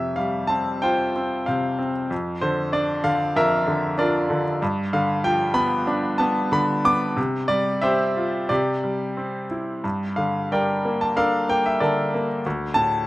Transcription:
grand piano
Already playing: F2 C3 E5
0.16 G3 F5
0.47 C4 A5
0.82 F4 C5 G5
1.16 C4
1.46 C3 C5 F5
1.79 C4
2.10 F2
2.41 D3 C5
2.72 D4 D5
3.04 D3 F5
3.36 F2 A#4 E5
3.67 D3
3.98 D4 F4 A#4 D5
4.30 D3
4.62 G2
4.93 D3 F5
5.24 F3 G5
5.54 B3 B5
5.87 D4
6.18 B3 A5
6.52 D3 B5
6.85 B3 D6
7.17 C3
7.48 G3 D5
7.82 C4 G4 C5 E5
8.17 F4
8.49 C3 G4 D5
8.84 G3
9.17 C4
9.51 E4
9.84 G2
10.16 D3 F5
10.51 G3 A#4 D5 G5
10.85 A#3
11.01 A5
11.16 D4 A4 A#4 F5
11.49 A#3 G5
11.66 E5
11.80 D3 A4 A#4 D5
12.14 A#3
12.46 D2
12.74 A2 A5

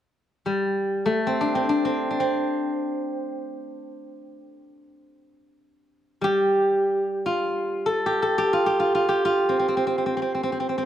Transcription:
guzheng
0.46 G3
1.06 A3
1.27 C4
1.41 D4
1.55 C4
1.69 D4
1.85 C4
2.11 D4
2.20 C4
6.21 G3 G4
7.26 F4
7.86 A4
8.06 G4
8.22 A4
8.38 G4
8.53 F4
8.66 G4
8.80 F4
8.95 F4
9.09 G4
9.25 F4
9.49 C4
9.59 C4
9.68 C4
9.77 C4
9.87 C4
9.98 C4
10.06 C4
10.17 C4
10.22 C4
10.35 C4
10.43 C4
10.52 C4
10.60 C4
10.69 C4
10.78 C4

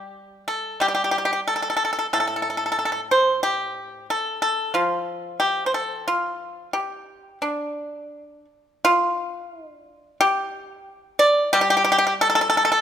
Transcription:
pipa
Already playing: G3 G4
0.48 A4
0.80 G3 G4
0.88 G4
0.95 G4
1.04 G4
1.11 G4
1.18 G4
1.25 G4
1.33 G4
1.48 A4
1.56 A4
1.62 A4
1.70 A4
1.77 A4
1.85 A4
1.93 A4
1.99 A4
2.13 A2 A4
2.20 A4
2.27 A4
2.36 A4
2.42 A4
2.50 A4
2.57 A4
2.66 A4
2.72 A4
2.79 A4
2.85 A4
2.92 A4
3.11 C5
3.43 G4
4.10 A4
4.42 A4
4.74 F3 F4
5.40 G4
5.66 C5
5.74 A4
6.08 F4
6.73 G4
7.42 D4
8.85 F4
9.73 D4
10.21 G4
11.19 D5
11.53 G3 G4
11.61 G4
11.70 G4
11.77 G4
11.84 G4
11.92 G4
11.98 G4
12.07 G4
12.21 A4
12.30 A4
12.35 A4
12.41 A4
12.50 A4
12.57 A4
12.65 A4
12.72 A4

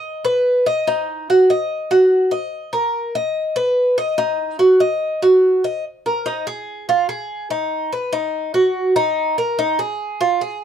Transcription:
cuban tres
Already playing: D#5
0.25 B4
0.66 D#5
0.88 D#4
1.30 F#4
1.50 D#5
1.91 F#4
2.31 D#5
2.73 A#4
3.15 D#5
3.56 B4
3.98 D#5
4.18 D#4
4.59 F#4
4.80 D#5
5.22 F#4
5.64 D#5
6.06 A#4
6.26 D#4
6.47 G#4
6.89 F4
7.09 G#4
7.50 D#4
7.93 B4
8.13 D#4
8.54 F#4
8.96 D#4
9.38 A#4
9.59 D#4
9.79 G#4
10.21 F4
10.41 G#4

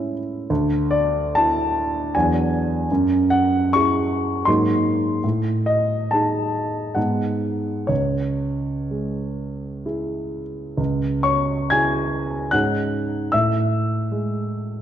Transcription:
grand piano
Already playing: A2 G#3 C#4 E4 E5
0.50 D2
0.91 D5
1.35 D4 E4 A5
2.15 E2 F#3 B3 D4 F#4 G#5
2.92 F#2
3.30 F#5
3.73 E4 G#4 C#6
4.45 G#2 F#3 A#3 D#4 G#4 C6
5.24 A2
5.66 D#5
6.11 D#4 G#4 A5
6.95 G#2 G#3 B3 D#4 G#4 F#5
7.87 C#2 C#5
8.91 G#3
9.86 E4 G#4
10.77 C#2
11.23 C#5 C#6
11.70 E4 G#4 G#5 G#6
12.51 G#2 G#3 C#4 D#4 G#4 F#5 F#6
13.32 A2 E5 E6
14.12 G#3

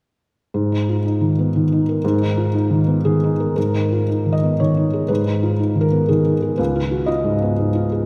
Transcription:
felt piano
0.54 G#2
0.72 D#4
0.89 F4
1.06 D#4
1.21 D#3
1.39 B3
1.56 D#3
1.72 D#4
1.89 A#4
2.04 G#2
2.22 D#4
2.37 F4
2.54 D#4
2.71 D#3
2.87 B3
3.05 D#3 G#4
3.24 D#4
3.40 A#4
3.56 G#2 A#4
3.75 D#4
3.92 F4
4.09 D#4
4.26 D#3
4.32 D#5
4.43 B3
4.60 D#3 C#5
4.77 D#4
4.93 G#4
5.08 G#2 B4
5.26 D#4
5.43 F4
5.59 D#4
5.75 D#3
5.81 A#4
5.92 B3
6.08 D#3 G#4
6.25 D#4
6.42 G#4
6.58 C#2 B4
6.76 F4
6.91 F#4
7.06 F4 D#5
7.24 G#2
7.42 B3
7.58 G#2
7.75 F4
7.92 G#4

